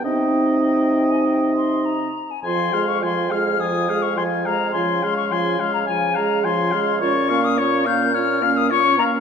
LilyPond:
<<
  \new Staff \with { instrumentName = "Flute" } { \time 4/4 \key c \minor \tempo 4 = 105 g''4 g''8. aes''16 g''8 c'''8 bes''8. aes''16 | \key f \minor c'''8. des'''16 c'''8 f'''8 ees'''8. des'''16 c'''8 bes''8 | c'''8. des'''16 c'''8. bes''16 aes''8 bes''8 c'''4 | des'''8. ees'''16 des'''8 g'''8 f'''8. ees'''16 des'''8 bes''8 | }
  \new Staff \with { instrumentName = "Oboe" } { \time 4/4 \key c \minor ees''2.~ ees''8 r8 | \key f \minor aes''8 f''8 aes''8 f''8 aes''8 f''8 aes''8 f''8 | aes''8 f''8 aes''8 f''8 aes''8 f''8 aes''8 f''8 | des''8 f''8 des''8 f''8 des''8 f''8 des''8 f''8 | }
  \new Staff \with { instrumentName = "Clarinet" } { \time 4/4 \key c \minor c'2.~ c'8 r8 | \key f \minor f'8 aes'8 f'8 aes'8 f'8 aes'8 f'8 aes'8 | f'8 aes'8 f'8 aes'8 f'8 aes'8 f'8 aes'8 | f'8 des'8 f'8 des'8 f'8 des'8 f'8 des'8 | }
  \new Staff \with { instrumentName = "French horn" } { \clef bass \time 4/4 \key c \minor ees'2.~ ees'8 r8 | \key f \minor f8 aes8 f8 aes8 f8 aes8 f8 aes8 | f8 aes8 f8 aes8 f8 aes8 f8 aes8 | des'8 bes8 des'8 bes8 des'8 bes8 des'8 bes8 | }
  \new Staff \with { instrumentName = "Bassoon" } { \clef bass \time 4/4 \key c \minor c2.~ c8 r8 | \key f \minor f,1 | des1 | bes,2.~ bes,8 r8 | }
>>